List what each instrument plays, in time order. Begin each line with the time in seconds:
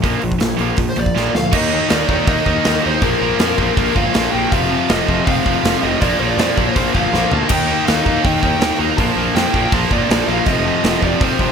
0.03 picked electric bass A#1, overdriven electric guitar A#2 F3 A#3, kick, open hi-hat
0.22 picked electric bass A#1, overdriven electric guitar A#2 F3, open hi-hat
0.32 kick
0.40 picked electric bass A#1, overdriven electric guitar A#2 F3, snare, open hi-hat
0.57 picked electric bass A#1, distorted electric guitar A#2, open hi-hat
0.61 overdriven electric guitar A#2 F3 A#3
0.77 picked electric bass A#1, overdriven electric guitar A#2 F3, kick, open hi-hat
0.89 lead electric guitar C5
0.96 picked electric bass A#1, overdriven electric guitar A#2 F3, lead electric guitar D5, open hi-hat
1.06 kick
1.16 picked electric bass A#1, overdriven electric guitar A#2 F3 A#3, snare
1.35 picked electric bass D2, overdriven electric guitar A#2 F3, lead electric guitar F5, snare
1.52 picked electric bass D#2, distorted electric guitar D#3, lead electric guitar D#5, kick, crash
1.56 overdriven electric guitar D#3 A#3 D#4
1.70 distorted electric guitar D#3 A#3 D#4
1.74 overdriven electric guitar D#3 A#3 D#4
1.90 picked electric bass D#2, overdriven electric guitar D#3 A#3 D#4, lead electric guitar D5, snare, open hi-hat
2.09 picked electric bass D#2, overdriven electric guitar D#3 A#3 D#4, kick
2.27 picked electric bass D#2, overdriven electric guitar D#3 A#3 D#4, lead electric guitar D#5, kick, open hi-hat
2.46 picked electric bass D#2, overdriven electric guitar D#3 A#3 D#4, kick
2.64 picked electric bass D#2, overdriven electric guitar D#3 A#3 D#4, snare, open hi-hat
2.84 picked electric bass D#2, overdriven electric guitar D#3 A#3 D#4, lead electric guitar C5
3.02 picked electric bass A#1, overdriven electric guitar A#2 F3 A#3, lead electric guitar A#4, kick, open hi-hat
3.22 picked electric bass A#1, overdriven electric guitar A#2 F3 A#3, lead electric guitar A#4
3.39 picked electric bass F2, overdriven electric guitar A#2 F3 A#3, snare, open hi-hat
3.58 picked electric bass A#1, overdriven electric guitar A#2 F3 A#3, kick
3.76 picked electric bass A#1, overdriven electric guitar A#2 F3 A#3, kick, open hi-hat
3.94 picked electric bass G1, overdriven electric guitar A#2 F3 A#3, lead electric guitar F5, kick
4.13 picked electric bass A#1, overdriven electric guitar A#2 F3 A#3, snare, open hi-hat
4.31 picked electric bass A#1, overdriven electric guitar A#2 F3 A#3, lead electric guitar G5
4.52 picked electric bass F1, overdriven electric guitar F2 C3 F3, lead electric guitar F5, kick, open hi-hat
4.71 overdriven electric guitar F2 C3 F3
4.89 picked electric bass F1, overdriven electric guitar F2 C3 F3, lead electric guitar D#5, snare, open hi-hat
5.08 picked electric bass F1, overdriven electric guitar F2 C3 F3, kick
5.25 picked electric bass F1, overdriven electric guitar F2 C3 F3, lead electric guitar F5, kick, open hi-hat
5.46 picked electric bass F1, overdriven electric guitar F2 C3 F3, kick
5.64 picked electric bass F1, overdriven electric guitar F2 C3 F3, snare, open hi-hat
5.83 picked electric bass F1, overdriven electric guitar F2 C3 F3, lead electric guitar D#5
6.01 picked electric bass A#1, overdriven electric guitar A#2 F3 A#3, lead electric guitar D5, kick, open hi-hat
6.19 picked electric bass A#1, overdriven electric guitar A#2 F3 A#3, lead electric guitar D5
6.37 picked electric bass F2, overdriven electric guitar A#2 F3 A#3, snare, open hi-hat
6.57 picked electric bass A#1, overdriven electric guitar A#2 F3 A#3, kick
6.71 lead electric guitar C5
6.76 picked electric bass A#1, overdriven electric guitar A#2 F3 A#3, kick, open hi-hat
6.93 picked electric bass G1, overdriven electric guitar A#2 F3 A#3, lead electric guitar F5, kick
7.12 picked electric bass A#1, overdriven electric guitar A#2 F3 A#3, snare
7.31 picked electric bass D2, overdriven electric guitar A#2 F3 A#3, lead electric guitar A5, floor tom
7.49 picked electric bass D#2, overdriven electric guitar D#3 A#3, distorted electric guitar D#4, lead electric guitar G5, kick, open hi-hat, crash
7.53 overdriven electric guitar D#4
7.66 distorted electric guitar D#3 A#3 D#4
7.72 overdriven electric guitar D#3 A#3 D#4
7.86 picked electric bass D#2, overdriven electric guitar D#3 A#3, lead electric guitar F5, snare, open hi-hat
7.90 overdriven electric guitar D#4
8.03 picked electric bass D#2, distorted electric guitar D#3 A#3 D#4, kick
8.08 overdriven electric guitar D#3 A#3 D#4
8.25 picked electric bass D#2, overdriven electric guitar D#3 A#3 D#4, lead electric guitar G5, kick, open hi-hat
8.40 picked electric bass D#2, lead electric guitar G5, kick
8.44 overdriven electric guitar D#3 A#3 D#4
8.59 picked electric bass D#2, snare, open hi-hat
8.63 overdriven electric guitar D#3 A#3 D#4
8.79 picked electric bass D#2, overdriven electric guitar D#3 A#3 D#4, lead electric guitar A#5
8.97 picked electric bass A#1, overdriven electric guitar A#2 F3 A#3, lead electric guitar A5, kick, open hi-hat
9.16 picked electric bass A#1, overdriven electric guitar A#2 F3 A#3
9.35 picked electric bass F2, overdriven electric guitar A#2 F3 A#3, lead electric guitar G5, snare, open hi-hat
9.54 picked electric bass A#1, overdriven electric guitar A#2 F3 A#3, kick
9.72 picked electric bass A#1, overdriven electric guitar A#2 F3 A#3, lead electric guitar A5, kick, open hi-hat
9.91 picked electric bass G1, overdriven electric guitar A#2 F3 A#3, lead electric guitar D5, kick
10.08 picked electric bass A#1, overdriven electric guitar A#2 F3 A#3, snare, open hi-hat
10.27 picked electric bass A#1, overdriven electric guitar A#2 F3 A#3, lead electric guitar F5
10.46 picked electric bass F1, overdriven electric guitar F2 C3 F3, lead electric guitar D#5, kick, open hi-hat
10.65 overdriven electric guitar F2 C3 F3
10.82 picked electric bass F1, overdriven electric guitar F2 C3 F3, snare, open hi-hat
11.01 picked electric bass F1, overdriven electric guitar F2 C3 F3, lead electric guitar D5, kick
11.20 picked electric bass F1, overdriven electric guitar F2 C3 F3, lead electric guitar C5, kick, open hi-hat
11.39 picked electric bass F1, overdriven electric guitar F2 C3 F3, kick